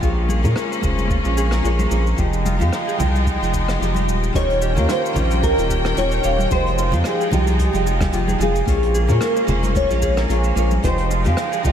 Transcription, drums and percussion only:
0.02 kick loud
0.02 cabasa medium
0.29 high conga medium
0.29 cabasa medium
0.44 low conga medium
0.44 cabasa soft
0.56 cross-stick medium
0.56 cabasa medium
0.73 cabasa soft
0.83 kick medium
0.83 low conga medium
0.83 cabasa medium
0.98 high conga medium
0.98 cabasa soft
1.10 kick loud
1.10 cabasa soft
1.25 cabasa soft
1.37 cabasa medium
1.51 cross-stick medium
1.51 cabasa soft
1.65 cabasa medium
1.79 high conga medium
1.79 cabasa soft
1.91 cabasa medium
2.07 cabasa soft
2.18 kick loud
2.18 cabasa medium
2.33 cabasa soft
2.46 high conga medium
2.46 cabasa medium
2.60 low conga medium
2.60 cabasa medium
2.73 cross-stick medium
2.73 cabasa medium
2.89 cabasa soft
3.00 low conga medium
3.00 cabasa medium
3.14 high conga medium
3.14 cabasa soft
3.26 kick loud
3.26 cabasa medium
3.43 cabasa soft
3.54 kick medium
3.54 cabasa medium
3.68 cross-stick medium
3.68 cabasa soft
3.83 cabasa medium
3.95 high conga medium
3.95 cabasa soft
4.09 cabasa medium
4.23 cabasa soft
4.35 kick loud
4.35 closed hi-hat medium
4.35 cabasa medium
4.50 closed hi-hat medium
4.62 cabasa medium
4.77 low conga medium
4.77 cabasa soft
4.89 cross-stick medium
4.89 closed hi-hat medium
4.89 cabasa medium
5.06 cabasa soft
5.16 low conga medium
5.16 cabasa medium
5.30 closed hi-hat medium
5.30 high conga medium
5.30 cabasa soft
5.43 kick loud
5.43 closed hi-hat medium
5.43 cabasa medium
5.58 closed hi-hat soft
5.58 cabasa soft
5.70 kick medium
5.70 cabasa medium
5.85 cross-stick medium
5.85 closed hi-hat medium
5.85 cabasa soft
5.97 closed hi-hat medium
5.97 cabasa medium
6.11 cabasa soft
6.24 cabasa medium
6.39 high conga medium
6.39 cabasa soft
6.51 kick loud
6.51 closed hi-hat medium
6.51 cabasa medium
6.67 closed hi-hat soft
6.78 cabasa medium
6.92 low conga medium
6.92 cabasa medium
7.04 cross-stick medium
7.04 closed hi-hat medium
7.04 cabasa medium
7.21 cabasa soft
7.31 low conga medium
7.31 cabasa medium
7.47 closed hi-hat medium
7.47 high conga medium
7.47 cabasa medium
7.59 kick medium
7.59 closed hi-hat medium
7.59 cabasa medium
7.73 closed hi-hat soft
7.73 high conga medium
7.73 cabasa soft
7.87 cabasa medium
8.01 kick loud
8.01 cross-stick medium
8.01 closed hi-hat medium
8.01 high conga medium
8.01 cabasa soft
8.12 closed hi-hat medium
8.12 cabasa medium
8.28 high conga medium
8.28 cabasa soft
8.41 cabasa medium
8.56 cabasa soft
8.67 kick loud
8.67 closed hi-hat medium
8.67 cabasa medium
8.83 closed hi-hat soft
8.95 cabasa medium
9.09 low conga medium
9.09 cabasa soft
9.21 cross-stick medium
9.21 closed hi-hat medium
9.21 cabasa medium
9.36 cabasa soft
9.48 low conga medium
9.48 cabasa medium
9.63 closed hi-hat medium
9.63 high conga medium
9.63 cabasa medium
9.75 kick loud
9.75 closed hi-hat medium
9.75 cabasa medium
9.90 closed hi-hat soft
9.90 cabasa soft
10.02 kick medium
10.02 cabasa medium
10.17 cross-stick medium
10.17 closed hi-hat medium
10.17 cabasa soft
10.30 closed hi-hat medium
10.30 cabasa medium
10.44 cabasa soft
10.57 cabasa medium
10.71 high conga medium
10.71 cabasa medium
10.83 kick loud
10.83 closed hi-hat medium
10.83 cabasa medium
10.98 closed hi-hat medium
11.11 cabasa medium
11.24 closed hi-hat medium
11.24 low conga medium
11.24 cabasa soft
11.37 cross-stick medium
11.37 closed hi-hat medium
11.37 cabasa medium
11.52 closed hi-hat soft
11.52 cabasa medium
11.64 low conga medium
11.64 cabasa medium

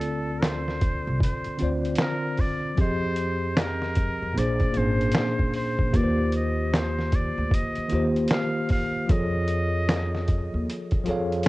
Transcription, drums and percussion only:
0.01 closed hi-hat medium
0.42 snare loud
0.42 clap medium
0.42 closed hi-hat medium
0.68 snare soft
0.81 kick medium
0.81 closed hi-hat medium
1.20 kick loud
1.20 closed hi-hat loud
1.44 closed hi-hat soft
1.59 closed hi-hat medium
1.85 closed hi-hat soft
1.95 snare loud
1.95 clap medium
1.95 closed hi-hat medium
2.37 kick medium
2.37 open hi-hat soft
2.77 kick loud
2.77 closed hi-hat medium
3.16 closed hi-hat medium
3.57 snare loud
3.57 clap loud
3.57 closed hi-hat medium
3.82 snare soft
3.95 kick medium
3.95 closed hi-hat medium
4.38 closed hi-hat medium
4.60 kick medium
4.60 closed hi-hat soft
4.74 closed hi-hat medium
5.01 closed hi-hat soft
5.12 snare loud
5.12 clap medium
5.12 closed hi-hat medium
5.39 kick medium
5.54 open hi-hat soft
5.79 kick medium
5.94 kick loud
5.94 closed hi-hat medium
6.32 closed hi-hat medium
6.73 snare loud
6.73 clap loud
6.73 closed hi-hat medium
6.99 snare soft
7.12 kick medium
7.12 closed hi-hat medium
7.51 kick loud
7.51 closed hi-hat medium
7.75 closed hi-hat soft
7.90 closed hi-hat medium
8.16 closed hi-hat soft
8.28 snare loud
8.28 clap medium
8.28 closed hi-hat medium
8.69 kick medium
8.69 open hi-hat soft
9.09 kick loud
9.09 closed hi-hat medium
9.48 closed hi-hat medium
9.89 snare loud
9.89 clap loud
9.89 closed hi-hat medium
10.15 snare soft
10.28 kick medium
10.28 closed hi-hat medium
10.70 closed hi-hat medium
10.91 kick medium
10.91 closed hi-hat soft
11.06 closed hi-hat medium
11.32 closed hi-hat soft
11.43 closed hi-hat medium

